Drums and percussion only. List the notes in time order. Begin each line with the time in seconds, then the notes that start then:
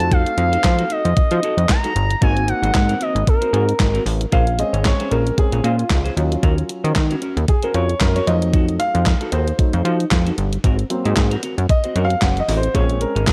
0.00 closed hi-hat
0.12 kick, closed hi-hat
0.26 closed hi-hat
0.38 closed hi-hat
0.53 closed hi-hat
0.64 kick, snare, clap, closed hi-hat
0.79 closed hi-hat
0.90 closed hi-hat
1.05 closed hi-hat
1.17 kick, closed hi-hat
1.31 closed hi-hat
1.43 closed hi-hat
1.58 closed hi-hat
1.69 kick, snare, clap, closed hi-hat
1.84 closed hi-hat
1.96 closed hi-hat
2.11 closed hi-hat
2.22 kick, closed hi-hat
2.37 closed hi-hat
2.48 closed hi-hat
2.64 closed hi-hat
2.75 kick, snare, clap, closed hi-hat
2.89 closed hi-hat
3.01 closed hi-hat
3.16 closed hi-hat
3.27 kick, closed hi-hat
3.42 closed hi-hat
3.54 closed hi-hat
3.69 closed hi-hat
3.80 kick, snare, clap, closed hi-hat
3.95 closed hi-hat
4.06 open hi-hat
4.21 closed hi-hat
4.32 kick, closed hi-hat
4.47 closed hi-hat
4.59 closed hi-hat
4.74 closed hi-hat
4.85 kick, snare, clap, closed hi-hat
5.00 closed hi-hat
5.11 closed hi-hat
5.27 closed hi-hat
5.38 kick, closed hi-hat
5.52 closed hi-hat
5.64 closed hi-hat
5.79 closed hi-hat
5.90 kick, snare, clap, closed hi-hat
6.06 closed hi-hat
6.17 closed hi-hat
6.32 closed hi-hat
6.43 kick, closed hi-hat
6.58 closed hi-hat
6.69 closed hi-hat
6.85 closed hi-hat
6.96 kick, snare, clap, closed hi-hat
7.11 closed hi-hat
7.22 closed hi-hat
7.37 closed hi-hat
7.48 kick, closed hi-hat
7.63 closed hi-hat
7.74 closed hi-hat
7.89 closed hi-hat
8.00 kick, snare, clap, closed hi-hat
8.16 closed hi-hat
8.27 closed hi-hat
8.42 closed hi-hat
8.54 kick, closed hi-hat
8.69 closed hi-hat
8.80 closed hi-hat
8.95 closed hi-hat
9.06 kick, snare, clap, closed hi-hat
9.21 closed hi-hat
9.32 closed hi-hat
9.48 closed hi-hat
9.59 kick, closed hi-hat
9.73 closed hi-hat
9.85 closed hi-hat
10.00 closed hi-hat
10.11 kick, snare, clap, closed hi-hat
10.27 closed hi-hat
10.38 closed hi-hat
10.53 closed hi-hat
10.64 kick, closed hi-hat
10.79 closed hi-hat
10.90 closed hi-hat
11.05 closed hi-hat
11.16 kick, snare, clap, closed hi-hat
11.31 closed hi-hat
11.43 closed hi-hat
11.58 closed hi-hat
11.69 kick, closed hi-hat
11.84 closed hi-hat
11.96 closed hi-hat
12.10 closed hi-hat
12.22 kick, snare, clap, closed hi-hat
12.37 closed hi-hat
12.49 open hi-hat
12.63 closed hi-hat
12.75 kick, closed hi-hat
12.90 closed hi-hat
13.01 closed hi-hat
13.16 closed hi-hat
13.27 kick, snare, clap, closed hi-hat